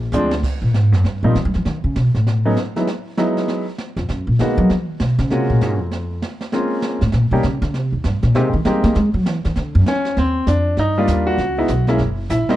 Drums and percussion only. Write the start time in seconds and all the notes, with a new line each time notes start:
0.13 hi-hat pedal
0.31 snare
0.43 brush sweep, kick, snare, crash
0.74 snare
0.93 snare
1.05 brush sweep, snare
1.35 snare
1.54 snare
1.65 brush sweep, snare
1.96 snare
2.15 snare
2.27 brush sweep, snare
2.57 snare
2.76 snare
2.87 brush sweep, snare
3.17 snare
3.37 snare
3.48 brush sweep, snare
3.78 snare
3.97 snare
4.09 brush sweep, snare
4.39 snare
4.70 brush sweep, snare
5.00 snare
5.18 snare
5.30 brush sweep, snare
5.61 snare
5.92 brush sweep, snare
6.22 snare
6.41 snare
6.52 brush sweep, snare
6.82 snare
7.01 snare
7.12 brush sweep, snare
7.43 snare
7.62 snare
7.74 brush sweep, snare
8.04 snare
8.23 snare
8.35 brush sweep, snare
8.65 snare
8.84 snare
8.95 brush sweep, snare
9.26 snare
9.44 snare
9.56 brush sweep, snare
9.86 snare
10.05 snare
10.17 brush sweep, snare
10.47 snare, hi-hat pedal
10.77 brush sweep, snare
11.07 snare, hi-hat pedal
11.38 brush sweep, snare
11.68 snare, hi-hat pedal
11.87 snare
11.98 brush sweep, snare
12.30 snare, hi-hat pedal
12.49 snare